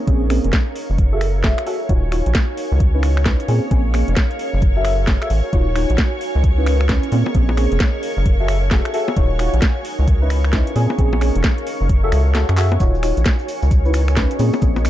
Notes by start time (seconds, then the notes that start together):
Already playing: C#5 C#6
0.07 A#1 A#3 C4 C#4 G#4, kick, closed hi-hat
0.30 A#3 C4 C#4 G#4, finger snap, open hi-hat
0.44 F1, closed hi-hat
0.53 kick, snare, closed hi-hat
0.76 open hi-hat
0.90 F#1
0.98 kick, closed hi-hat
1.13 F#4 G#4 A4 E5
1.21 finger snap, open hi-hat
1.44 F#4 G#4 A4 E5, kick, snare, closed hi-hat
1.58 finger snap, closed hi-hat
1.67 F#4 G#4 A4 E5, open hi-hat
1.89 D#1 D#4 F4 F#4 C#5, kick, closed hi-hat
2.12 D#4 F4 F#4 C#5, finger snap, open hi-hat
2.26 A#1, closed hi-hat
2.35 kick, snare, closed hi-hat
2.57 open hi-hat
2.72 C#2
2.80 kick, closed hi-hat
2.94 C#4 D#4 E4 B4
3.03 finger snap, open hi-hat
3.17 finger snap
3.26 C#4 D#4 E4 B4, kick, snare, closed hi-hat
3.40 closed hi-hat
3.48 A#2 A#3 C4 C#4 G#4, open hi-hat
3.71 A#1 A#3 C4 C#4 G#4, kick, closed hi-hat
3.94 A#3 C4 C#4 G#4, finger snap, open hi-hat
4.08 F1, closed hi-hat
4.17 kick, snare, closed hi-hat
4.31 closed hi-hat
4.39 open hi-hat
4.54 F#1
4.62 kick, closed hi-hat
4.76 F#4 G#4 A4 E5
4.85 F#4 G#4 A4 E5, finger snap, open hi-hat
5.07 kick, snare, closed hi-hat
5.22 F#4 G#4 A4 E5, finger snap, closed hi-hat
5.30 A1, open hi-hat
5.53 D#1 D#4 F4 F#4 C#5, kick, closed hi-hat
5.76 D#4 F4 F#4 C#5, finger snap, open hi-hat
5.90 A#1, closed hi-hat
5.98 kick, snare, closed hi-hat
6.21 open hi-hat
6.35 C#2
6.44 kick, closed hi-hat
6.58 C#4 D#4 E4 B4
6.66 finger snap, open hi-hat
6.81 finger snap
6.89 C#4 D#4 E4 B4, kick, snare, closed hi-hat
7.03 closed hi-hat
7.12 A#2 A#3 C4 C#4 G#4, open hi-hat
7.26 high bongo
7.35 A#1 A#3 C4 C#4 G#4, kick, closed hi-hat
7.49 high bongo
7.57 A#3 C4 C#4 G#4, finger snap, open hi-hat
7.72 F1, closed hi-hat
7.80 kick, snare, closed hi-hat
8.03 open hi-hat
8.17 F#1
8.26 kick, closed hi-hat
8.40 F#4 G#4 A4 E5
8.48 finger snap, open hi-hat
8.71 F#4 G#4 A4 E5, kick, snare, closed hi-hat
8.85 finger snap, closed hi-hat
8.94 F#4 G#4 A4 E5, open hi-hat
9.08 high bongo
9.16 D#1 D#4 F4 F#4 C#5, kick, closed hi-hat
9.39 D#4 F4 F#4 C#5, finger snap, open hi-hat
9.54 A#1, closed hi-hat
9.62 kick, snare, closed hi-hat
9.85 open hi-hat
9.99 C#2
10.08 kick, closed hi-hat
10.22 C#4 D#4 E4 B4
10.30 finger snap, open hi-hat
10.44 finger snap
10.53 C#4 D#4 E4 B4, kick, snare, closed hi-hat
10.67 closed hi-hat
10.76 A#2 A#3 C4 C#4 G#4, open hi-hat
10.90 high bongo
10.98 A#1 A#3 C4 C#4 G#4, kick, closed hi-hat
11.13 high bongo
11.21 A#3 C4 C#4 G#4, finger snap, open hi-hat
11.35 F1, closed hi-hat
11.44 kick, snare, closed hi-hat
11.58 closed hi-hat
11.67 open hi-hat
11.81 F#1
11.89 kick, closed hi-hat
12.04 F#4 G#4 A4 E5
12.12 C#2, finger snap, open hi-hat
12.35 F#4 G#4 A4 E5, snare, closed hi-hat
12.49 F#2, finger snap, closed hi-hat
12.57 F#4 G#4 A4 E5, clap, open hi-hat
12.72 closed hi-hat, high bongo
12.80 D#1 D#4 F4 F#4 C#5 C#6, kick, closed hi-hat, cabasa
12.95 cabasa
13.03 D#4 F4 F#4 C#5, finger snap, open hi-hat, cabasa
13.17 A#1, closed hi-hat, cabasa
13.25 kick, snare, closed hi-hat, cabasa
13.39 cabasa
13.48 open hi-hat, cabasa
13.62 C#2, cabasa
13.71 kick, closed hi-hat, cabasa
13.85 C#4 D#4 E4 B4, cabasa
13.94 finger snap, open hi-hat, cabasa
14.08 finger snap, cabasa
14.16 C#4 D#4 E4 B4, kick, snare, closed hi-hat, cabasa
14.31 closed hi-hat, cabasa
14.39 A#2 A#3 C4 C#4 G#4, open hi-hat, cabasa
14.53 high bongo, cabasa
14.62 A#1 A#3 C4 C#4 G#4, kick, closed hi-hat, cabasa
14.76 high bongo, cabasa
14.85 A#3 C4 C#4 G#4, finger snap, open hi-hat, cabasa